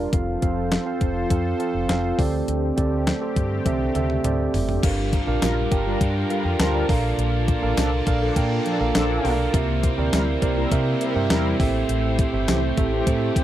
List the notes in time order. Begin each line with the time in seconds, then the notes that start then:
Already playing: G3 D4 F4 G4 A#4 D5 F5
0.12 F1 F3 C4 F4 A4 C5 F5, kick, closed hi-hat
0.42 F1 C4 F4 A4 F5, kick, closed hi-hat
0.72 snare, closed hi-hat
0.86 C4 F4 A4 F5
1.01 F1, kick, closed hi-hat
1.30 F2 C4 F4 A4 F5, kick, closed hi-hat
1.59 C4 F4 A4 F5, closed hi-hat
1.74 F1
1.89 F1 C4 F4 A4 F5, snare, closed hi-hat
2.18 D2 D3 A3 C4 G4 A4 D5, kick, open hi-hat
2.48 D2, closed hi-hat
2.77 D2 C4 G4 A4 D5, kick, closed hi-hat
3.07 snare, closed hi-hat
3.21 C4 G4 A4 C5
3.36 G2, kick, closed hi-hat
3.65 C2 C4 G4 A4 E5, kick, closed hi-hat, high tom
3.95 D2 C4 G4 A4 E5, closed hi-hat, mid tom
4.10 mid tom
4.24 D2 C4 G4 A4 D5, closed hi-hat, mid tom
4.54 F#1, floor tom, open hi-hat
4.69 floor tom
4.83 G1 G2 D3 G3 D4 F4 G4 A#4 F5, kick, closed hi-hat, crash
5.12 D3 G3, kick, closed hi-hat
5.27 A#1 D4 G4 A#4 F5
5.42 A#1 G3 F4 A#4, snare, closed hi-hat, tambourine
5.71 G1 D4 G4 A#4 G5, kick, closed hi-hat
5.86 G3 F4 A#4
6.00 G2 D3 G3, kick, closed hi-hat
6.30 G3 F4 A4 A#4 F5, closed hi-hat
6.45 F2 A#4 G5
6.59 D2 D3 G3 F4 A#4 C5 A5, snare, closed hi-hat, tambourine
6.75 D5 A#5
6.89 A#1 A#2 F3 A#3 D4 A4 A#4 D5 F5 A5, kick, open hi-hat
7.18 A#1, closed hi-hat
7.48 kick, closed hi-hat
7.62 A1 D4 A4 A#4 F5
7.77 C2 F3 D4 A4, snare, closed hi-hat, tambourine
8.06 A#1 D4 A4 A#4 F5, kick, closed hi-hat
8.22 F3 D4 A4
8.36 A#2 F3 A#3 D4 A4 A#4 G5, kick, closed hi-hat
8.66 F3 D4 A4, closed hi-hat
8.80 A#1 D4 A4 A#4 F5
8.95 A#1 F3 A#3 D4 A4, snare, closed hi-hat, tambourine
9.24 B1 D4 A4 A#4 F5, open hi-hat
9.53 C2 C3 G3 C4 E4 G4 A#4 C5 E5, kick, closed hi-hat
9.83 G3 C4, kick, closed hi-hat
9.98 D2 C4 G4 A#4 D5
10.13 D2 G3 E4 A#4, snare, closed hi-hat, tambourine
10.42 C2 C4 G4 A#4 D5, kick, closed hi-hat
10.57 G3 E4 A#4
10.71 C3 G3 C4 G4 A#4 E5, kick, closed hi-hat
11.01 G3 E4 A#4, closed hi-hat
11.15 G2 C4 G4 A#4 E5
11.30 E2 G3 C4 E4 A#4, snare, closed hi-hat, tambourine
11.59 A1 A2 E3 A3 C4 G4 A4 E5, kick, open hi-hat
11.89 A1, closed hi-hat
12.19 kick, closed hi-hat
12.33 G1 C4 G4 A4 E5
12.48 C2 E3 C4 G4, snare, closed hi-hat, tambourine
12.77 A1 C4 G4 A4 E5, kick, closed hi-hat
12.92 E3 C4 G4
13.06 A2 E3 A3 C4 G4 A4 C5, kick, closed hi-hat
13.36 E3 C4 G4, kick, closed hi-hat